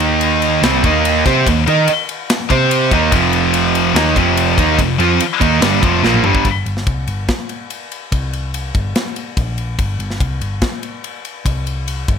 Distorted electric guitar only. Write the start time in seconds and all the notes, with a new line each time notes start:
Already playing: D#3 A#3 D#4
0.62 C3 G3 C4
0.83 D#3 A#3 D#4
1.26 C4 G4 C5
1.46 D#3 A#3
1.66 D#4 A#4 D#5
1.87 muted distorted electric guitar stroke
2.49 C4 G4 C5
2.91 D#3 A#3 D#4
3.11 F2 C3 F3
3.94 D#3 A#3 D#4
4.15 F2 C3 F3
4.57 D#3 A#3 D#4
4.78 F2 C3
4.98 F3 C4 F4
5.19 muted distorted electric guitar stroke
5.41 D#3 A#3 D#4
5.61 G2 D3 G3
5.82 F2 C3 F3
6.03 A#2 F3 A#3
6.24 G2 D3 G3